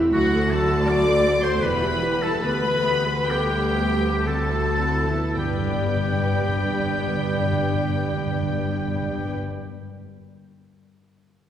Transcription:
Already playing: E3 G3 A3 C4 E4 G4 A4 C5
0.12 D2 D3 F#3 F#4 F#5
0.32 A3 A4
0.49 F#3 D4 F#4 A4 A5
0.69 A3 A4
0.86 F#3 A3 F#4 D5 D6
1.06 A3 A4
1.23 F#3 F#4 A4
1.43 A3 A4 C5 C6
1.61 E1 E2 E3 G4 B4 B5
1.82 G3 E4
2.02 E3 G4 B4
2.22 G3 E4 A4 A5
2.43 D2 D3 B3 G4 B4 B5
2.64 G3 B4
2.84 B3 D4 G4
3.06 G3 B4
3.28 G3 B3 G4 A4 G5
3.52 G3 B4
3.76 B3 G4 B4
4.00 G3 B4
4.25 D3 C4 F#4 A4 A5
4.46 D3
4.51 B3 E4
4.57 D3
4.69 D3
4.80 C4 E4 F#4 B4
4.92 D3
5.03 D3
5.09 B3 E4
5.15 D3
5.36 G1 G2 B3 D4 G4 B4 D5 G5
5.44 G2 G3
5.50 G2 D4
5.58 G2 B4
5.65 G2 D5
5.75 G2
5.82 G2
5.89 G2
5.96 G2
6.04 G2
6.12 G2
6.19 G2
6.26 G2
6.34 G2
6.41 G2
6.49 G2
6.56 G2
6.63 G2
6.71 G2
6.79 G2
6.86 G2
6.93 G2
7.00 G2
7.08 G2
7.16 G2
7.23 G2
7.30 G2
7.37 G2
7.45 G2
7.52 G2
7.60 G2
7.67 G2
7.75 G2
7.82 G2
7.90 G2
7.98 G2
8.05 G2
8.12 G2
8.19 G2
8.27 G2
8.35 G2
8.42 G2
8.50 G2
8.58 G2
8.65 G2
8.72 G2
8.80 G2
8.87 G2
8.95 G2
9.02 G2
9.10 G2
9.18 G2
9.25 G2
9.33 G2
9.41 G2

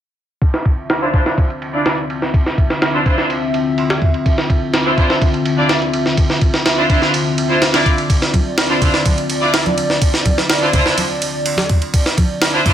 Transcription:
0.42 D3 C4 F4 E5, kick, ride
0.54 snare
0.65 kick, ride
0.90 snare, ride
1.02 D4 E4 F4 C5
1.13 D4 E4 F4 C5, kick, ride
1.26 snare
1.38 kick, ride
1.50 ride
1.62 ride
1.74 D4 E4 F4 D5
1.86 snare, ride
1.98 ride
2.10 ride
2.22 snare
2.34 kick, ride
2.46 snare
2.58 kick, ride
2.70 snare
2.82 snare, ride
2.94 D4 E4 F4 C5
3.05 D4 E4 F4 C5, kick, ride
3.18 snare
3.30 ride
3.54 ride
3.78 ride
3.90 snare
4.02 kick, ride
4.14 ride
4.26 kick, ride
4.38 snare
4.50 kick, ride
4.74 snare, ride
4.86 D4 E4 F4 C5
4.97 D4 E4 F4 C5, kick, ride
5.10 snare
5.22 kick, ride
5.34 ride
5.45 ride
5.58 D4 E4 F4 D5
5.69 snare, ride
5.82 ride
5.93 ride
6.06 snare
6.17 kick, ride
6.30 snare
6.41 kick, ride
6.54 snare
6.66 snare, ride
6.78 D4 E4 F4 C5
6.89 D4 E4 F4 C5, kick, ride
7.02 snare
7.14 ride
7.38 ride
7.50 D4 E4 F4 C5
7.62 snare, ride
7.74 D4 E4 F4 D5, snare, ride
7.86 kick, ride
7.98 ride
8.10 D5, kick, ride
8.22 snare
8.34 kick, ride, high conga
8.58 snare, ride
8.70 D4 E4 F4 C5
8.82 D4 E4 F4 C5, kick, ride, low conga
8.94 snare
9.06 kick, ride, high conga
9.18 ride
9.30 ride
9.42 D4 E4 F4 D5
9.54 snare, ride
9.66 ride, high conga
9.78 ride
9.90 snare
10.02 kick, ride
10.14 snare
10.25 kick, ride, high conga
10.38 snare
10.50 snare, ride
10.62 D4 E4 F4 C5
10.73 D4 E4 F4 C5, kick, ride, low conga
10.86 snare
10.98 ride, high conga
11.22 ride
11.46 ride
11.57 snare, high conga
11.69 kick, ride
11.82 ride
11.94 kick, ride
12.06 snare
12.18 kick, ride, high conga
12.42 snare, ride
12.54 D4 E4 F4 C5
12.66 D4 E4 F4 C5, kick, ride, low conga

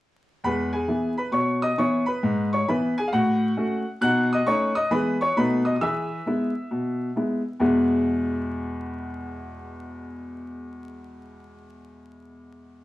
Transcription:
0.44 E2 G#3 B4 B5
0.73 G#4 G#5
0.88 E3 B3 E4
1.18 B4 B5
1.32 B2 C#5 C#6
1.62 D#5 D#6
1.78 E3 B3 E4 C#5 C#6
2.06 B4 B5
2.23 G#2
2.53 C#5 C#6
2.68 E3 B3 E4 B4 B5
2.98 G#4 G#5
3.08 F5
3.13 A2 F#4 F#5
3.57 A3 C#4 F#4
4.01 B2 D#4 F#5 F#6
4.33 D#5 D#6
4.46 A3 C#4 D#4 C#5 C#6
4.75 D#5 D#6
4.91 E3 G#3 B3 E4 G#4 B4 B5
5.21 C#5 C#6
5.37 B2 A3 B3 D#4 B4 B5
5.65 D#5 D#6
5.76 D#6
5.81 E3 G#4 E5 E6
6.26 G#3 B3 E4
6.71 B2
7.16 G#3 B3 E4
7.60 E2 B2 G#3 B3 E4 G#4

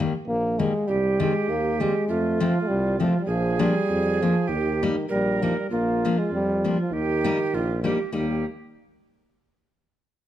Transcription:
0.00 D#3 G3 A#3
0.26 A#1 A#3
0.59 D#3 G3 G#3 A#3
0.88 C2 G3 G4
1.20 D#3 G3 G#3 C4
1.48 D#2 A#3
1.80 D#3 G3 G#3 C4
2.08 F2 A3 F4
2.40 F3 A3 C4
2.62 A3
2.68 C2 G3
3.00 F3 A3 C4
3.21 G3
3.26 A#1 F3 G#4
3.59 F3 G3 A#3 D4
3.89 F2
4.22 F3 A#3 D4
4.48 D#2 D#3 G4
4.83 G3 A#3 D#4
5.09 A#1 G3 A#4
5.42 F3 G3 A#3 D#4
5.58 G3
5.70 A#1 A#3 F4
6.05 F3 A#3 D4
6.19 G#3
6.31 F2 G3
6.64 F3 A#3 D4
6.80 F3
6.90 D#2 D#3 G4
7.24 G3 A#3 D#4
7.53 A#1 F4
7.83 G3 A#3 D#4 G4
8.12 D#2 D#3 G3 A#3 D#4 G4

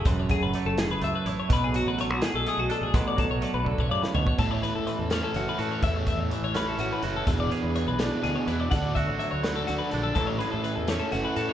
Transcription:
Already playing: F#3 A3
0.05 E1 F#2 B4, kick, closed hi-hat
0.19 C#5
0.29 F#3 G#4, kick, closed hi-hat
0.42 F#1 B4
0.53 A3 C#5, closed hi-hat
0.65 F#1 A4
0.78 G#4, snare, closed hi-hat
0.90 F#1 B4
1.01 C#2 A3 E5, closed hi-hat
1.15 B4
1.26 A1 E4 C#5, closed hi-hat
1.40 C#5
1.49 B1 B2 B4, kick, closed hi-hat
1.64 G#4
1.74 F#3 F#4, closed hi-hat
1.86 A1 B4
1.98 A3 C#5, closed hi-hat
2.10 B1 F#4
2.22 G#4, snare, closed hi-hat
2.34 B1 A4
2.46 A3 G#4, closed hi-hat
2.58 B1 F#4
2.69 D4 A4, closed hi-hat
2.81 A1 G#4
2.94 A1 B2 B4, kick, closed hi-hat
3.08 D5
3.16 F#3 A4, kick, closed hi-hat
3.30 B1 C#5
3.42 A3 D5, closed hi-hat
3.54 B1 B4
3.64 D3 A4, kick
3.78 B1 C#5, kick
3.89 F#2 C#3 D5
4.03 B4, snare
4.14 D2 B2 C#5, floor tom
4.27 C#5, kick
4.38 A1 A2 E3 A3 C#4 E4 A4, kick, closed hi-hat
4.51 C#5
4.63 B4, closed hi-hat
4.75 A2 A4
4.86 E3 B4, closed hi-hat
4.99 E2 A4
5.10 E3 A3 C#4 E4 A4 C#5, snare, closed hi-hat
5.15 A2
5.24 A4
5.34 F#1 E3 A3 C#4 E4 F#4, closed hi-hat
5.38 A4
5.49 B4
5.58 A2 A3 C#4 E4 F#4 A4, closed hi-hat
5.71 C#5
5.82 E2 A2 E3 A3 C#4 E4 A4 E5, kick, closed hi-hat
5.96 C#5
6.07 E5, kick, closed hi-hat
6.18 E2 C#5
6.30 E3 E5, closed hi-hat
6.42 A1 C#5
6.54 A2 E3 A3 C#4 E4 A4 B4, snare, closed hi-hat
6.68 A4
6.78 A1 E3 A3 C#4 E4 F#4 A4, closed hi-hat
6.93 B4
7.02 F#1 A3 C#4 E4 F#4 A4, closed hi-hat
7.16 A4
7.26 E1 E2 E3 B3 D4 G#4 B4, kick, closed hi-hat
7.40 D5
7.51 G#4 C#5, closed hi-hat
7.63 E2 B4
7.76 E3 C#5, closed hi-hat
7.87 B1 B4
7.98 E3 B3 D4 G#4 D5, snare, closed hi-hat
8.11 B4
8.22 D2 B2 E3 B3 D4 G#4, closed hi-hat
8.35 C#5
8.47 E2 B3 D4 E4 G#4 B4, closed hi-hat
8.60 D5
8.70 D2 D3 A3 D4 F#4 F#5, kick, closed hi-hat
8.74 A4
8.82 D5
8.95 F#4 E5, kick, closed hi-hat
9.07 A1 C#5
9.19 F#3 E5, closed hi-hat
9.31 D2 C#5
9.43 D3 A3 D4 F#4 A4 B4, snare, closed hi-hat
9.56 A4
9.67 D2 D3 A3 D4 F#4 A4, closed hi-hat
9.79 B4
9.91 A#1 D4 F#4 A4, closed hi-hat
10.03 A4
10.15 A1 A2 E3 A3 C#4 E4 A4, kick, closed hi-hat
10.27 C#5
10.39 G#4 B4, closed hi-hat
10.52 A2 A4
10.64 E3 B4, closed hi-hat
10.76 E2 A4
10.88 A2 E3 A3 C#4 E4 A4 C#5, snare, closed hi-hat
11.00 A4
11.12 F#1 E3 A3 C#4 E4 F#4 A4, closed hi-hat
11.24 B4
11.36 A2 A3 C#4 E4 F#4 A4, closed hi-hat
11.49 C#5

